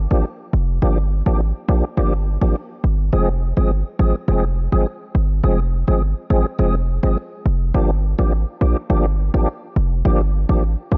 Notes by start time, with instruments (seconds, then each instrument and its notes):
0.11 808-style bass G#1, tonewheel organ F3 A#3 D4 G4
0.53 808-style bass F1
0.82 808-style bass G1, tonewheel organ F3 A#3 D4 G4
1.26 808-style bass G#1, tonewheel organ F3 A#3 D4 G4
1.68 808-style bass A#1, tonewheel organ F3 A#3 D4 G4
1.97 808-style bass G1, tonewheel organ F3 A#3 D4 G4
2.41 808-style bass G#1, tonewheel organ F3 A#3 D4 G4
2.84 808-style bass G1
3.13 808-style bass F1, tonewheel organ F3 G#3 C4 G#4
3.57 808-style bass G1, tonewheel organ F3 G#3 C4 G#4
3.99 808-style bass G#1, tonewheel organ F3 G#3 C4 G#4
4.28 808-style bass F1, tonewheel organ F3 G#3 C4 G#4
4.72 808-style bass G1, tonewheel organ F3 G#3 C4 G#4
5.15 808-style bass G1
5.43 808-style bass F1, tonewheel organ F3 G#3 C4 G#4
5.87 808-style bass G1, tonewheel organ F3 G#3 C4 G#4
6.30 808-style bass G#1, tonewheel organ F3 G#3 C4 G#4
6.59 808-style bass F1, tonewheel organ F3 G#3 C4 G#4
7.03 808-style bass G1, tonewheel organ F3 G#3 C4 G#4
7.46 808-style bass F1
7.74 808-style bass G1, tonewheel organ F3 A#3 D4 G4
8.18 808-style bass G#1, tonewheel organ F3 A#3 D4 G4
8.61 808-style bass A#1, tonewheel organ F3 A#3 D4 G4
8.90 808-style bass G1, tonewheel organ F3 A#3 D4 G4
9.34 808-style bass G#1, tonewheel organ F3 A#3 D4 G4
9.76 808-style bass F1
10.05 808-style bass G1, tonewheel organ F3 A#3 D4 G4
10.49 808-style bass G#1, tonewheel organ F3 A#3 D4 G4
10.91 808-style bass A#1, tonewheel organ F3 A#3 D4 G4